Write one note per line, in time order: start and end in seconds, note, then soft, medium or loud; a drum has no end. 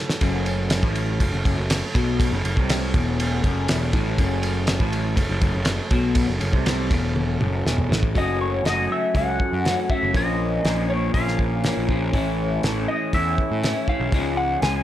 0.00 8.13 F#3 medium
0.00 8.12 A3 medium
0.00 8.12 A4 medium
0.00 8.13 C#5 medium
0.10 snare medium
0.21 0.80 F#1 loud
0.21 0.83 F#2 loud
0.21 kick medium
0.21 ride medium
0.46 ride medium
0.70 snare medium
0.70 ride medium
0.83 1.18 A1 medium
0.83 1.20 A2 medium
0.83 kick medium
0.95 ride medium
1.20 1.32 F#1 medium
1.20 1.32 F#2 medium
1.20 kick medium
1.20 ride medium
1.33 1.45 F#1 medium
1.33 1.44 F#2 medium
1.45 1.57 F#1 medium
1.45 1.56 F#2 loud
1.45 kick medium
1.45 ride medium
1.57 1.81 F#1 medium
1.57 1.78 F#2 medium
1.70 snare loud
1.70 ride loud
1.94 2.30 B1 medium
1.94 2.32 B2 loud
1.94 kick loud
1.94 ride medium
2.20 kick loud
2.20 ride medium
2.31 2.43 F#1 medium
2.31 2.45 F#2 medium
2.44 2.56 F#1 medium
2.44 2.58 F#2 medium
2.44 ride medium
2.57 2.92 C2 medium
2.57 2.95 C3 loud
2.57 kick medium
2.69 snare loud
2.69 ride medium
2.94 3.41 E1 medium
2.94 3.44 E2 loud
2.94 kick loud
2.94 ride medium
3.20 ride medium
3.44 3.67 F#1 medium
3.44 3.68 F#2 loud
3.44 kick medium
3.44 ride medium
3.68 3.92 E1 medium
3.68 3.93 E2 loud
3.68 snare loud
3.68 ride medium
3.93 4.17 A1 medium
3.93 4.18 A2 loud
3.93 kick loud
3.93 ride medium
4.18 4.77 F#1 medium
4.18 4.80 F#2 loud
4.18 kick medium
4.18 ride medium
4.43 ride medium
4.67 snare loud
4.67 ride medium
4.80 5.15 A1 medium
4.80 5.17 A2 medium
4.80 kick medium
4.93 ride medium
5.16 5.29 F#1 medium
5.16 5.28 F#2 medium
5.16 kick medium
5.16 ride medium
5.29 5.41 F#1 medium
5.29 5.40 F#2 medium
5.41 5.54 F#1 medium
5.41 5.52 F#2 loud
5.41 kick loud
5.41 ride medium
5.54 5.78 F#1 medium
5.54 5.74 F#2 medium
5.65 snare loud
5.65 ride medium
5.91 6.26 B1 medium
5.91 6.29 B2 loud
5.91 kick loud
5.91 ride medium
6.15 kick medium
6.15 ride medium
6.28 6.40 F#1 medium
6.28 6.38 F#2 medium
6.40 6.53 F#1 medium
6.40 6.53 F#2 medium
6.40 ride medium
6.53 6.88 C2 medium
6.53 6.90 C3 loud
6.53 kick medium
6.66 snare loud
6.66 ride medium
6.90 7.37 E1 medium
6.90 7.40 E2 medium
6.90 kick medium
6.90 ride medium
7.16 high tom medium
7.40 7.64 F#1 medium
7.40 7.65 F#2 medium
7.40 mid tom medium
7.66 7.89 E1 medium
7.66 7.91 E2 medium
7.66 snare medium
7.78 mid tom medium
7.90 8.13 A1 medium
7.90 8.14 A2 loud
7.90 snare medium
8.03 kick medium
8.13 8.60 F#1 medium
8.13 10.12 F#3 medium
8.13 8.64 F#3 medium
8.13 10.12 A3 soft
8.13 8.64 A3 medium
8.13 10.12 C#4 soft
8.13 8.66 C#4 medium
8.13 8.65 F#4 medium
8.13 10.11 A4 medium
8.13 kick medium
8.13 open hi-hat soft
8.18 8.41 D#5 medium
8.41 8.66 C#5 medium
8.64 8.87 F#1 medium
8.64 9.13 F#3 medium
8.64 8.90 A3 medium
8.64 8.90 C#4 medium
8.64 8.88 F#4 medium
8.64 8.89 D#5 medium
8.64 snare medium
8.64 open hi-hat soft
8.89 9.15 A3 medium
8.89 9.16 C#4 medium
8.89 9.16 F#4 medium
8.89 9.16 E5 medium
9.15 9.37 C#2 medium
9.15 9.64 F#3 medium
9.15 9.64 A3 medium
9.15 9.66 C#4 medium
9.15 9.65 F#4 medium
9.15 9.93 F#5 medium
9.15 kick medium
9.15 open hi-hat soft
9.40 kick medium
9.52 9.74 F#2 medium
9.65 10.13 F#3 medium
9.65 9.90 A3 medium
9.65 9.91 C#4 medium
9.65 9.88 F#4 medium
9.65 snare medium
9.65 open hi-hat soft
9.90 10.14 A3 medium
9.90 10.15 C#4 medium
9.90 10.13 F#4 medium
9.90 10.16 E5 medium
9.90 kick medium
10.03 10.14 F#1 medium
10.13 10.58 A#1 medium
10.13 10.63 A#2 medium
10.13 12.11 F3 medium
10.13 10.64 F3 medium
10.13 12.11 A#3 medium
10.13 10.64 A#3 medium
10.13 14.83 C#4 medium
10.13 10.65 C#4 medium
10.13 10.65 F4 medium
10.13 12.11 A#4 medium
10.13 10.86 D#5 medium
10.13 kick medium
10.13 open hi-hat soft
10.64 11.09 A#1 medium
10.64 11.14 A#2 medium
10.64 11.13 F3 medium
10.64 10.90 A#3 medium
10.64 10.90 C#4 medium
10.64 10.88 F4 medium
10.64 snare medium
10.64 open hi-hat soft
10.90 11.14 A#3 soft
10.90 11.14 C#4 medium
10.90 11.14 F4 medium
10.90 11.13 C#5 medium
11.14 11.69 A#1 medium
11.14 11.63 F3 medium
11.14 11.64 A#3 medium
11.14 11.65 C#4 medium
11.14 11.65 F4 medium
11.14 11.85 F5 medium
11.14 kick medium
11.14 open hi-hat soft
11.28 snare soft
11.39 kick medium
11.64 12.12 F3 medium
11.64 11.90 A#3 medium
11.64 11.90 C#4 medium
11.64 11.89 F4 medium
11.64 snare medium
11.64 open hi-hat soft
11.77 12.10 A#1 medium
11.89 12.13 A#3 soft
11.89 12.14 C#4 medium
11.89 12.13 F4 medium
11.89 kick medium
12.12 12.57 A1 medium
12.12 12.61 A2 medium
12.12 12.62 E3 medium
12.12 14.10 A3 medium
12.12 12.63 A3 medium
12.12 12.64 C#4 medium
12.12 14.09 E4 medium
12.12 12.64 E4 medium
12.12 14.10 C#5 medium
12.12 kick medium
12.12 open hi-hat soft
12.63 12.85 A1 medium
12.63 13.13 A2 medium
12.63 13.13 E3 medium
12.63 12.88 A3 medium
12.63 12.89 C#4 medium
12.63 12.87 E4 medium
12.63 snare medium
12.63 open hi-hat soft
12.88 13.13 A3 soft
12.88 13.15 C#4 medium
12.88 13.15 E4 medium
12.88 13.14 D#5 medium
13.13 13.35 E2 medium
13.13 13.61 E3 medium
13.13 13.62 A3 medium
13.13 13.63 C#4 medium
13.13 13.64 E4 medium
13.13 13.89 E5 medium
13.13 kick medium
13.13 open hi-hat soft
13.38 kick medium
13.51 13.72 A2 medium
13.62 14.11 E3 medium
13.62 13.89 A3 medium
13.62 13.89 C#4 medium
13.62 13.87 E4 medium
13.62 snare medium
13.62 open hi-hat soft
13.88 14.12 A3 soft
13.88 14.14 C#4 medium
13.88 14.11 E4 medium
13.88 14.35 F5 medium
13.88 kick medium
14.00 14.11 B1 medium
14.10 14.56 C#2 medium
14.10 14.60 C#3 medium
14.10 14.61 F3 medium
14.10 14.83 G#3 medium
14.10 14.61 G#3 medium
14.10 14.83 F4 medium
14.10 14.83 C#5 medium
14.10 kick loud
14.10 open hi-hat soft
14.14 14.62 C#4 medium
14.14 14.62 F4 medium
14.37 14.62 F#5 medium
14.62 14.83 C#2 medium
14.62 14.83 C#3 medium
14.62 14.83 F3 medium
14.62 14.83 G#3 medium
14.62 14.83 C#4 medium
14.62 14.83 F4 medium
14.62 14.83 G#5 medium
14.62 snare medium
14.62 open hi-hat soft